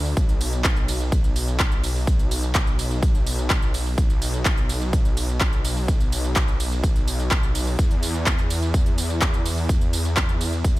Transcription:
0.00 0.15 D2 medium
0.05 tambourine soft
0.17 3.95 B1 medium
0.17 kick loud
0.17 closed hi-hat medium
0.17 tambourine soft
0.29 closed hi-hat soft
0.29 tambourine soft
0.41 open hi-hat loud
0.41 ride medium
0.41 tambourine medium
0.53 closed hi-hat soft
0.53 tambourine soft
0.64 kick loud
0.64 clap loud
0.64 closed hi-hat medium
0.64 tambourine soft
0.76 closed hi-hat soft
0.76 tambourine soft
0.88 open hi-hat loud
0.88 ride medium
0.88 tambourine medium
1.00 tambourine soft
1.12 kick loud
1.12 closed hi-hat medium
1.12 tambourine soft
1.24 closed hi-hat soft
1.24 tambourine soft
1.36 open hi-hat loud
1.36 ride medium
1.36 tambourine medium
1.48 closed hi-hat soft
1.48 tambourine soft
1.60 kick loud
1.60 clap loud
1.60 closed hi-hat loud
1.60 tambourine soft
1.72 closed hi-hat soft
1.72 tambourine soft
1.84 open hi-hat loud
1.84 ride medium
1.84 tambourine medium
1.96 tambourine soft
2.07 kick loud
2.07 closed hi-hat medium
2.07 tambourine soft
2.19 closed hi-hat soft
2.19 tambourine soft
2.31 open hi-hat loud
2.31 ride medium
2.31 tambourine medium
2.43 closed hi-hat soft
2.43 tambourine soft
2.55 kick loud
2.55 clap loud
2.55 closed hi-hat medium
2.55 tambourine soft
2.67 closed hi-hat soft
2.67 tambourine soft
2.79 open hi-hat loud
2.79 ride medium
2.79 tambourine medium
2.91 closed hi-hat soft
2.91 tambourine soft
3.03 kick loud
3.03 closed hi-hat medium
3.03 tambourine soft
3.15 closed hi-hat soft
3.15 tambourine soft
3.27 open hi-hat loud
3.27 ride medium
3.27 tambourine medium
3.38 closed hi-hat soft
3.38 tambourine soft
3.50 kick loud
3.50 clap loud
3.50 closed hi-hat medium
3.50 tambourine soft
3.62 closed hi-hat soft
3.62 tambourine soft
3.74 open hi-hat loud
3.74 ride medium
3.74 tambourine medium
3.86 tambourine soft
3.98 7.76 B1 medium
3.98 kick loud
3.98 closed hi-hat medium
3.98 tambourine soft
4.10 closed hi-hat soft
4.10 tambourine soft
4.22 open hi-hat loud
4.22 ride medium
4.22 tambourine medium
4.34 closed hi-hat soft
4.34 tambourine soft
4.45 kick loud
4.45 clap loud
4.45 closed hi-hat medium
4.45 tambourine soft
4.57 closed hi-hat soft
4.57 tambourine soft
4.69 open hi-hat medium
4.69 ride medium
4.69 tambourine medium
4.81 closed hi-hat soft
4.81 tambourine soft
4.93 kick loud
4.93 closed hi-hat medium
4.93 tambourine soft
5.05 closed hi-hat soft
5.05 tambourine soft
5.17 open hi-hat loud
5.17 ride medium
5.17 tambourine medium
5.29 closed hi-hat soft
5.29 tambourine soft
5.41 kick loud
5.41 clap loud
5.41 closed hi-hat medium
5.41 tambourine soft
5.53 closed hi-hat soft
5.53 tambourine soft
5.65 open hi-hat loud
5.65 ride medium
5.65 tambourine medium
5.77 tambourine soft
5.88 kick loud
5.88 closed hi-hat medium
5.88 tambourine soft
6.00 closed hi-hat soft
6.00 tambourine soft
6.12 open hi-hat loud
6.12 ride medium
6.12 tambourine medium
6.24 closed hi-hat soft
6.24 tambourine soft
6.36 kick loud
6.36 clap loud
6.36 closed hi-hat medium
6.36 tambourine soft
6.48 closed hi-hat soft
6.48 tambourine soft
6.60 open hi-hat medium
6.60 ride medium
6.60 tambourine medium
6.72 closed hi-hat soft
6.72 tambourine soft
6.84 kick loud
6.84 closed hi-hat loud
6.84 tambourine soft
6.96 closed hi-hat soft
6.96 tambourine soft
7.08 open hi-hat loud
7.08 ride medium
7.08 tambourine medium
7.19 closed hi-hat soft
7.19 tambourine soft
7.31 kick loud
7.31 clap loud
7.31 closed hi-hat medium
7.31 tambourine soft
7.43 closed hi-hat soft
7.43 tambourine soft
7.55 open hi-hat medium
7.55 ride medium
7.55 tambourine medium
7.67 tambourine soft
7.79 10.79 E2 medium
7.79 kick loud
7.79 closed hi-hat loud
7.79 tambourine soft
7.91 closed hi-hat soft
7.91 tambourine soft
8.03 open hi-hat loud
8.03 ride medium
8.03 tambourine medium
8.15 closed hi-hat soft
8.15 tambourine soft
8.26 kick loud
8.26 clap loud
8.26 closed hi-hat loud
8.26 tambourine soft
8.38 closed hi-hat soft
8.38 tambourine soft
8.50 open hi-hat medium
8.50 ride medium
8.50 tambourine medium
8.62 closed hi-hat soft
8.62 tambourine soft
8.74 kick loud
8.74 closed hi-hat loud
8.74 tambourine soft
8.86 closed hi-hat soft
8.86 tambourine soft
8.98 open hi-hat loud
8.98 ride medium
8.98 tambourine medium
9.10 closed hi-hat soft
9.10 tambourine soft
9.22 kick loud
9.22 clap loud
9.22 closed hi-hat loud
9.22 tambourine soft
9.34 closed hi-hat soft
9.34 tambourine soft
9.46 open hi-hat medium
9.46 ride medium
9.46 tambourine medium
9.58 tambourine soft
9.69 kick loud
9.69 closed hi-hat loud
9.69 tambourine soft
9.81 closed hi-hat soft
9.81 tambourine soft
9.93 open hi-hat loud
9.93 ride medium
9.93 tambourine medium
10.05 closed hi-hat soft
10.05 tambourine soft
10.17 kick loud
10.17 clap loud
10.17 closed hi-hat loud
10.17 tambourine soft
10.29 closed hi-hat soft
10.29 tambourine soft
10.41 open hi-hat medium
10.41 ride medium
10.41 tambourine medium
10.53 closed hi-hat soft
10.53 tambourine soft
10.64 kick loud
10.64 closed hi-hat loud
10.64 tambourine soft
10.76 closed hi-hat soft

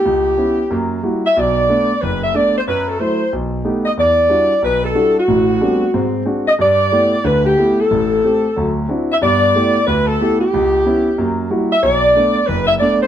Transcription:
0.00 0.92 G4 medium
0.05 0.33 C#2 medium
0.38 0.59 B3 soft
0.38 0.59 C#4 soft
0.38 0.59 E4 soft
0.70 0.98 F#2 medium
0.70 0.98 A#3 medium
1.03 1.24 G3 soft
1.03 1.24 A#3 soft
1.03 1.25 E4 soft
1.03 1.25 F#4 soft
1.25 1.36 E5 medium
1.36 1.64 B1 medium
1.36 1.64 B2 medium
1.36 2.02 D5 loud
1.68 1.90 A3 soft
1.68 1.90 B3 soft
1.68 1.90 D4 soft
2.02 2.30 F#1 medium
2.02 2.22 B4 medium
2.23 2.34 E5 medium
2.34 2.55 A3 soft
2.34 2.55 B3 soft
2.34 2.56 D4 soft
2.34 2.56 D5 medium
2.57 2.62 C5 medium
2.67 2.95 F#2 medium
2.67 2.95 F#3 medium
2.67 2.86 B4 medium
2.87 2.99 A4 medium
3.00 3.21 F#3 soft
3.00 3.21 A3 soft
3.00 3.21 E4 soft
3.00 3.32 C5 medium
3.33 3.60 B1 medium
3.65 3.86 A3 soft
3.65 3.86 B3 soft
3.65 3.86 D#4 soft
3.65 3.87 G4 soft
3.85 3.91 D#5 medium
3.97 4.25 E2 medium
3.97 4.59 D5 loud
4.29 4.51 G3 soft
4.29 4.51 D4 soft
4.29 4.52 E4 soft
4.29 4.52 F#4 soft
4.62 4.91 B1 medium
4.62 4.84 B4 medium
4.84 5.14 A4 medium
4.95 5.17 G3 soft
4.95 5.17 D4 soft
4.95 5.17 E4 soft
4.95 5.17 F#4 soft
5.18 6.15 F#4 medium
5.28 5.56 A1 medium
5.28 5.56 A2 medium
5.61 5.82 G3 soft
5.61 5.83 A3 soft
5.61 5.83 B3 soft
5.61 5.83 C4 soft
5.61 5.83 D4 soft
5.94 6.22 G#2 medium
5.94 6.22 C4 medium
6.25 6.48 G#3 soft
6.25 6.48 C4 soft
6.25 6.48 D4 soft
6.25 6.48 F#4 soft
6.48 6.53 D#5 medium
6.59 6.87 G2 medium
6.59 7.22 D5 loud
6.92 7.13 A3 soft
6.92 7.14 B3 soft
6.92 7.14 E4 soft
6.92 7.14 G4 soft
7.24 7.53 D2 medium
7.24 7.53 D3 medium
7.24 7.45 B4 medium
7.46 7.76 G4 medium
7.57 7.79 A3 soft
7.57 7.79 B3 soft
7.57 7.79 E4 soft
7.57 7.79 G4 soft
7.79 8.77 A4 medium
7.91 8.19 A1 medium
7.91 8.19 A2 medium
8.24 8.45 A3 soft
8.24 8.45 C4 soft
8.24 8.46 G4 soft
8.56 8.85 D2 medium
8.56 8.84 F#3 medium
8.89 9.10 C4 soft
8.89 9.11 D4 soft
8.89 9.11 E4 soft
8.89 9.11 F#4 soft
9.11 9.16 E5 medium
9.22 9.50 G2 medium
9.22 9.50 B3 medium
9.22 9.83 D5 loud
9.55 9.76 A3 soft
9.55 9.76 B3 soft
9.55 9.76 E4 soft
9.55 9.76 G4 soft
9.87 10.15 D2 medium
9.87 10.07 B4 medium
10.06 10.40 A4 medium
10.20 10.41 A3 soft
10.20 10.42 B3 soft
10.20 10.42 E4 soft
10.20 10.42 G4 soft
10.40 11.34 G4 medium
10.54 10.81 C#2 medium
10.86 11.07 B3 soft
10.86 11.07 C#4 soft
10.86 11.07 E4 medium
11.18 11.46 F#2 medium
11.18 11.46 A#3 medium
11.50 11.72 G3 soft
11.50 11.72 A#3 soft
11.50 11.72 E4 soft
11.50 11.72 F#4 medium
11.71 11.82 E5 medium
11.83 12.11 B1 medium
11.83 12.44 D5 loud
12.15 12.37 A3 soft
12.15 12.37 B3 soft
12.15 12.38 D4 soft
12.47 12.77 F#1 medium
12.47 12.68 B4 medium
12.67 12.73 E5 medium
12.79 13.03 A3 soft
12.79 13.03 B3 soft
12.79 13.03 D4 medium
12.79 13.00 D5 medium
13.01 13.07 C5 medium

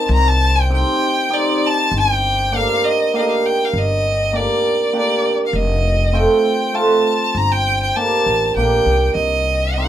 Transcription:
0.00 0.12 A5 medium
0.09 0.82 C2 loud
0.09 0.29 A#5 medium
0.28 0.57 A5 loud
0.55 0.70 G5 medium
0.69 1.00 C4 medium
0.69 1.00 D#4 soft
0.69 1.00 G4 medium
0.69 1.35 G5 medium
1.29 1.60 C4 medium
1.29 1.61 D#4 medium
1.29 1.60 G4 medium
1.29 1.67 D5 medium
1.66 1.94 A5 medium
1.91 2.64 G1 medium
1.99 2.57 G5 loud
2.52 2.82 A#3 medium
2.52 2.82 D4 medium
2.52 2.82 G4 medium
2.52 2.86 F5 loud
2.84 3.13 D#5 medium
3.13 3.43 A#3 medium
3.13 3.43 D4 medium
3.13 3.43 G4 medium
3.13 3.19 F5 medium
3.18 3.30 D#5 medium
3.29 3.47 F5 medium
3.46 3.66 G5 medium
3.65 3.80 F5 medium
3.73 4.46 G1 loud
3.78 4.37 D#5 medium
4.33 4.63 A#3 medium
4.33 4.63 D4 soft
4.33 4.63 G4 medium
4.33 4.95 D5 medium
4.93 5.23 A#3 medium
4.93 5.23 D4 medium
4.93 5.24 G4 medium
4.98 5.38 D5 medium
5.46 5.57 F5 medium
5.53 6.26 F1 loud
5.53 6.16 D#5 medium
6.13 6.44 A3 medium
6.13 6.44 C4 medium
6.13 6.44 F4 medium
6.13 6.77 G5 medium
6.73 7.04 A3 medium
6.73 7.04 C4 medium
6.73 7.04 F4 medium
6.73 7.39 A5 medium
7.35 7.89 G1 loud
7.35 7.53 A#5 medium
7.52 7.81 G5 medium
7.82 7.98 G5 medium
7.96 8.26 A#3 medium
7.96 8.26 D4 soft
7.96 8.26 G4 medium
7.96 8.55 A5 medium
8.26 8.53 A1 medium
8.56 8.83 A#1 medium
8.56 8.87 A#3 medium
8.56 8.87 D4 medium
8.56 8.87 G4 medium
8.56 9.12 G5 medium
8.86 9.13 C2 medium
9.14 9.88 C2 medium
9.14 9.75 D#5 medium
9.73 9.88 C4 medium
9.73 9.88 D#4 medium
9.73 9.88 G5 medium
9.78 9.88 G4 medium

